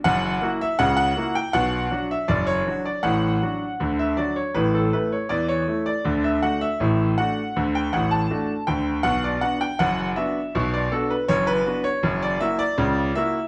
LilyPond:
<<
  \new Staff \with { instrumentName = "Grand piano" } { \time 2/4 \key d \major \tempo 4 = 80 fis''8. e''16 fis''16 fis''8 g''16 | fis''8. e''16 d''16 cis''8 d''16 | fis''4~ fis''16 e''16 d''16 cis''16 | b'16 a'16 b'16 cis''16 d''16 cis''8 d''16~ |
d''16 e''16 fis''16 e''8. fis''8~ | fis''16 g''16 fis''16 a''8. g''8 | fis''16 d''16 fis''16 g''16 fis''8 e''8~ | e''16 d''16 a'16 b'16 cis''16 b'8 cis''16~ |
cis''16 d''16 e''16 d''8. e''8 | }
  \new Staff \with { instrumentName = "Grand piano" } { \time 2/4 \key d \major <fis,, fis,>8 <ais e' fis'>8 <cis, cis>8 <ais e' fis'>8 | <b,, b,>8 <fis d' fis'>8 <fis,, fis,>8 <fis d' fis'>8 | <a,, a,>8 <fis d' fis'>8 <d, d>8 <fis d' fis'>8 | <a,, a,>8 <a e'>8 <e, e>8 <a e'>8 |
<d, d>8 <a d' fis'>8 <a,, a,>8 <a d' fis'>8 | <d, d>8 <a,, a,>8 <a d' fis'>8 <d, d>8 | <b,, b,>8 <b d' fis'>8 <fis,, fis,>8 <b d' fis'>8 | <b,, b,>8 <b d' fis'>8 <fis,, fis,>8 <b d' fis'>8 |
<fis,, fis,>8 <ais e' fis'>8 <cis, cis>8 <ais e' fis'>8 | }
>>